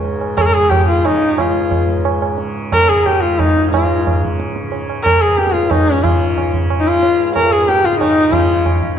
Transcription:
Already playing: C#2 G#2 C#3
0.05 tabla tin
0.21 tabla na
0.37 A#4, tabla na, tabla ge
0.41 C#3 G#4
0.46 A#4
0.53 G#4
0.70 G4, tabla na, tabla ge
0.88 C#3 F4, tabla te
1.05 D#4, tabla na, tabla ge
1.22 tabla te
1.35 C#2, tabla na, tabla ge
1.40 F4
1.71 tabla na, tabla ge
1.84 G#2
1.88 tabla ge
2.05 tabla na
2.22 tabla na
2.32 C#3
2.38 tabla tin
2.72 A#4, tabla na, tabla ge
2.78 C#3
2.89 G#4, tabla te
3.06 G4, tabla na, tabla ge
3.22 C#2 F4, tabla te
3.39 D#4, tabla na, tabla ge
3.57 tabla te
3.69 G#2 F4
3.74 tabla na, tabla ge
4.07 tabla na, tabla ge
4.15 C#3
4.24 tabla ge
4.40 tabla te
4.56 tabla te
4.63 C#3
4.72 tabla tin
4.90 tabla na
5.03 C#2 A#4, tabla na, tabla ge
5.21 G#4
5.38 G4, tabla te
5.47 tabla te
5.54 G#2 F4, tabla ke
5.63 tabla te
5.71 D#4, tabla na, tabla ge
5.87 tabla te
5.93 C#4
6.01 C#3 F4, tabla na, tabla ge
6.38 tabla na, tabla ge
6.47 C#3
6.54 tabla ge
6.70 tabla na
6.80 D#4
6.87 F4, tabla na
6.93 C#2
7.03 tabla tin
7.36 G#2 A#4, tabla na, tabla ge
7.52 G#4, tabla te
7.69 G4, tabla te
7.77 tabla te
7.82 C#3 F4, tabla ke
7.93 tabla te
8.00 D#4, tabla na, tabla ge
8.17 tabla te
8.28 C#3
8.32 F4, tabla na, tabla ge
8.66 tabla na, tabla ge
8.75 C#2
8.83 tabla ge

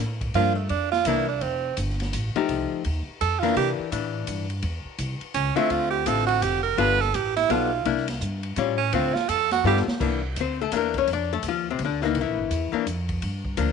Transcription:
Already playing: A2
0.21 kick, ride
0.34 G2 F3 A#3 D4 F4, kick, ride
0.55 A3
0.69 F2 D4, kick, ride
0.92 F4, snare
1.05 C2 E3 A#3 D4 E4, kick, hi-hat pedal, ride
1.28 D4
1.41 F1 C4, kick, ride
1.77 G1, kick, hi-hat pedal, ride
1.89 snare
2.00 snare, ride
2.13 A1, kick, hi-hat pedal, ride
2.35 F3 A3 D#4 G4, muted upright bass stroke, ride
2.49 C2, kick, ride
2.71 muted upright bass stroke
2.84 D#2, kick, ride
3.08 muted upright bass stroke
3.21 F2 A4, kick, hi-hat pedal, ride
3.39 E3 A#3 F4, ride
3.43 D4, snare
3.56 C3 G4, kick, ride
3.79 muted upright bass stroke
3.92 A2 E3 D4, kick, hi-hat pedal, ride
4.27 G2, kick, hi-hat pedal, ride
4.50 ride
4.62 E2, kick, ride
4.85 muted upright bass stroke
4.98 C2, kick, hi-hat pedal, ride
5.20 muted upright bass stroke, ride
5.34 C#2 C#4, kick, hi-hat pedal, ride
5.56 D3 A3 C4 E4 F4, muted upright bass stroke, ride
5.70 D2 F4, kick, ride
5.90 G4
6.06 A1 D3 A3 C4 F4 A4, kick, hi-hat pedal, ride
6.27 F#4, ride
6.42 F1 G4, kick, hi-hat pedal, ride
6.63 A#4
6.78 G1 G3 B3 F4 A4 B4, kick, ride
7.01 A4, snare
7.14 A1 G4, kick, hi-hat pedal, ride
7.37 E4, snare, ride
7.49 B1 G3 B3 F4 A4, kick, ride
7.85 C2 A#3 D4 E4, kick, ride
7.97 snare
8.08 snare, ride
8.21 G2, kick, hi-hat pedal
8.43 ride
8.56 A2 G3 C#4 F4, kick, hi-hat pedal, ride
8.78 C#4
8.93 D2 D3 A3 C4 F4, kick, ride
9.14 F4, muted upright bass stroke, snare
9.29 F2 A4, kick, hi-hat pedal, ride
9.51 F#4, snare, ride
9.64 G2 G3 B3 F4 G4 A4
9.77 snare
9.87 muted upright bass stroke, snare
10.00 C2 E3 A#3 D4, kick, crash
10.36 D2, kick, hi-hat pedal, ride
10.40 C4 C5
10.61 A3 A4
10.72 E2 E3 A#3 D4, kick, hi-hat pedal, ride
10.77 A#3 A#4
10.94 C#4, kick, ride
10.98 C#5
11.07 F2, kick, ride
11.13 D4 D5
11.33 A3 A4
11.43 D#2, kick, hi-hat pedal, ride
11.48 F3 F4
11.70 C3 C4
11.79 D2, kick, ride
11.84 D3 D4
12.02 E3 A#3 D4 D#4, snare
12.06 D#3
12.14 C2, kick, ride
12.21 E3 E4
12.25 A#1
12.38 G1
12.50 E2, kick, hi-hat pedal, ride
12.72 E3 A#3 D4, muted upright bass stroke
12.86 F2, kick, hi-hat pedal, ride
13.09 kick, ride
13.22 G2, kick, ride
13.45 kick
13.57 D2 F3 A#3 D4, hi-hat pedal, ride

